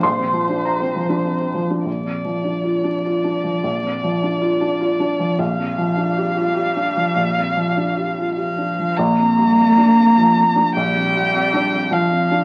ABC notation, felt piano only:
X:1
M:3/4
L:1/16
Q:1/4=102
K:Bb
V:1 name="Felt piano"
c'4 b4 z4 | z12 | z12 | z12 |
z12 | z12 | z12 |]
V:2 name="Felt piano" clef=bass
B,,, C F, D2 C F, D F,, C F, D | (3B,,,2 F,,2 F,2 (3D2 F2 D2 (3F2 D2 F,2 | (3B,,,2 F,,2 F,2 (3D2 F2 D2 (3F2 D2 F,2 | (3B,,,2 F,,2 F,2 (3D2 G2 F2 (3G2 D2 F,2 |
(3B,,,2 F,,2 F,2 (3D2 G2 F2 (3G2 D2 F,2 | (3B,,,2 F,,2 G,,2 (3F,,2 D2 F,,2 (3F,2 F,,2 D2 | (3B,,,2 F,,2 G,,2 (3F,,2 D2 F,,2 (3F,2 F,,2 D2 |]